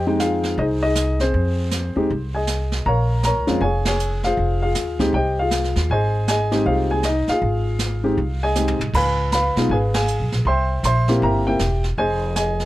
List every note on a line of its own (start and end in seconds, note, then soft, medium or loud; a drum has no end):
0.00 0.54 F2 medium
0.00 0.18 G4 medium
0.00 0.18 C5 medium
0.00 0.18 D#5 medium
0.07 0.55 G#3 medium
0.07 0.55 C4 medium
0.07 0.56 D#4 medium
0.07 0.56 G5 medium
0.19 0.56 F4 medium
0.19 0.56 G#4 medium
0.19 0.59 F5 medium
0.19 snare medium
0.19 hi-hat pedal soft
0.43 snare soft
0.58 1.30 C2 medium
0.58 0.82 D#4 medium
0.58 0.82 G#4 medium
0.58 0.82 C5 medium
0.58 0.64 D#5 medium
0.58 brush sweep soft
0.83 1.19 D#4 medium
0.83 1.19 G#4 medium
0.83 1.21 D#5 medium
0.95 snare medium
0.95 hi-hat pedal medium
1.19 1.95 C4 medium
1.19 2.31 G#4 medium
1.19 2.38 C5 medium
1.19 snare soft
1.33 1.92 F2 medium
1.33 brush sweep soft
1.71 snare medium
1.71 hi-hat pedal medium
1.96 2.09 D#2 medium
1.96 2.09 G#3 medium
1.96 2.08 C4 medium
1.96 2.09 D#4 medium
1.96 2.09 G4 medium
2.10 2.82 C2 medium
2.10 brush sweep soft
2.35 2.83 G#4 medium
2.35 2.83 D#5 medium
2.35 2.82 G#5 medium
2.47 snare medium
2.47 hi-hat pedal medium
2.72 snare soft
2.85 3.33 A#1 medium
2.85 3.22 A#4 medium
2.85 3.22 C#5 medium
2.85 3.22 F5 medium
2.85 3.23 A#5 medium
2.85 brush sweep soft
3.23 3.61 A#4 medium
3.23 3.61 C#5 medium
3.23 3.60 A#5 medium
3.23 snare medium
3.23 hi-hat pedal medium
3.36 3.48 C#2 medium
3.47 3.60 F2 medium
3.47 3.60 G#3 medium
3.47 3.60 C4 medium
3.47 3.60 C#4 medium
3.47 3.60 F4 medium
3.47 snare soft
3.61 4.33 F1 medium
3.61 3.85 G#4 medium
3.61 3.85 C#5 medium
3.61 3.85 F5 medium
3.61 3.85 G#5 medium
3.61 brush sweep soft
3.85 4.22 G#4 medium
3.85 4.22 C#5 medium
3.85 4.22 G#5 medium
3.85 snare medium
3.85 ride medium
3.99 hi-hat pedal medium
4.23 4.60 F4 medium
4.23 4.60 G#4 medium
4.23 4.60 C5 medium
4.23 4.61 F5 medium
4.23 snare soft
4.37 4.73 F1 medium
4.37 brush sweep soft
4.62 4.99 F4 medium
4.62 4.99 G#4 medium
4.62 4.98 F5 medium
4.75 5.11 D#2 medium
4.75 snare medium
4.75 hi-hat pedal medium
4.99 5.12 G#3 medium
4.99 5.12 C4 medium
4.99 5.12 D#4 medium
4.99 5.12 G4 medium
4.99 kick medium
4.99 snare soft
5.13 5.71 C2 medium
5.13 5.37 G4 medium
5.13 5.37 C5 medium
5.13 5.37 D#5 medium
5.13 5.36 G5 medium
5.13 brush sweep soft
5.39 5.88 F4 medium
5.39 5.88 G#4 medium
5.39 5.87 F5 medium
5.51 snare medium
5.51 hi-hat pedal medium
5.64 snare soft
5.76 5.89 D#2 medium
5.76 snare soft
5.90 6.62 G#1 medium
5.90 6.27 G#4 medium
5.90 6.27 C5 medium
5.90 6.26 D#5 medium
5.90 6.26 G#5 loud
5.90 brush sweep soft
6.28 6.64 G#4 medium
6.28 6.65 D#5 medium
6.28 6.63 G#5 loud
6.28 snare medium
6.28 hi-hat pedal medium
6.52 7.01 G#3 medium
6.52 7.01 C4 medium
6.52 7.01 D#4 medium
6.52 7.01 G4 medium
6.52 snare soft
6.65 7.24 C2 medium
6.65 6.90 F4 medium
6.65 6.90 G#4 medium
6.65 6.89 C5 medium
6.65 6.88 F5 medium
6.65 brush sweep medium
6.91 7.04 G#4 medium
6.91 7.03 G#5 medium
7.03 7.29 D#5 medium
7.03 snare medium
7.03 hi-hat pedal medium
7.07 7.28 D#4 medium
7.27 8.39 F4 medium
7.27 8.39 G#4 medium
7.27 8.46 F5 medium
7.27 muted upright bass stroke soft
7.27 snare soft
7.41 8.14 G#1 medium
7.41 brush sweep soft
7.79 snare medium
7.79 hi-hat pedal medium
8.04 8.16 G#3 medium
8.04 8.16 C4 medium
8.04 8.16 D#4 medium
8.04 8.16 G4 medium
8.17 8.76 C2 medium
8.17 brush sweep soft
8.43 8.91 G#4 medium
8.43 8.91 D#5 medium
8.43 8.91 G#5 loud
8.55 8.77 G#3 medium
8.55 8.77 C4 medium
8.55 8.78 D#4 medium
8.55 8.78 G4 medium
8.55 snare soft
8.55 hi-hat pedal medium
8.68 floor tom medium
8.79 8.92 C2 medium
8.79 floor tom medium
8.94 9.52 C#2 medium
8.94 9.30 B4 medium
8.94 9.30 F5 medium
8.94 9.31 G#5 medium
8.94 9.31 B5 loud
8.94 brush sweep soft
8.94 kick medium
8.94 crash medium
9.32 9.68 B4 medium
9.32 9.69 F5 medium
9.32 9.71 B5 medium
9.32 snare medium
9.32 hi-hat pedal soft
9.56 9.69 B1 medium
9.56 9.69 G#3 medium
9.56 9.69 B3 medium
9.56 9.69 D#4 medium
9.56 9.69 F4 medium
9.56 snare medium
9.69 10.17 G#1 medium
9.69 9.94 G#4 medium
9.69 9.94 B4 medium
9.69 9.93 F5 medium
9.69 9.76 G#5 medium
9.69 brush sweep soft
9.94 10.43 G#4 medium
9.94 10.43 F5 medium
9.94 10.42 G#5 medium
9.94 snare medium
9.94 ride medium
10.08 hi-hat pedal medium
10.20 10.32 B1 medium
10.32 10.44 A#1 medium
10.32 snare soft
10.45 10.81 C2 medium
10.45 10.82 C5 medium
10.45 10.82 E5 medium
10.45 10.82 G5 medium
10.45 10.82 C6 loud
10.45 brush sweep soft
10.83 11.19 A#1 medium
10.83 11.21 C5 medium
10.83 11.21 E5 medium
10.83 11.24 C6 loud
10.83 snare medium
10.83 hi-hat pedal medium
11.08 11.44 A#3 medium
11.08 11.44 C4 medium
11.08 11.44 E4 medium
11.08 11.44 G4 medium
11.08 snare soft
11.21 11.57 G1 medium
11.21 11.46 A#4 medium
11.21 11.46 E5 medium
11.21 11.45 G5 medium
11.21 11.45 A#5 medium
11.21 brush sweep soft
11.47 11.59 A#3 medium
11.47 11.59 C4 medium
11.47 11.59 E4 medium
11.47 11.83 G4 medium
11.47 11.59 A#4 medium
11.47 11.82 E5 medium
11.47 11.82 G5 medium
11.59 11.95 E1 medium
11.59 snare medium
11.59 hi-hat pedal medium
11.84 snare soft
11.98 12.65 F1 medium
11.98 12.34 G#4 medium
11.98 12.34 C5 medium
11.98 12.34 D#5 medium
11.98 12.33 G#5 loud
11.98 brush sweep soft
12.36 12.65 G#4 medium
12.36 12.65 D#5 medium
12.36 12.65 G#5 loud
12.36 snare medium
12.36 hi-hat pedal medium
12.60 snare soft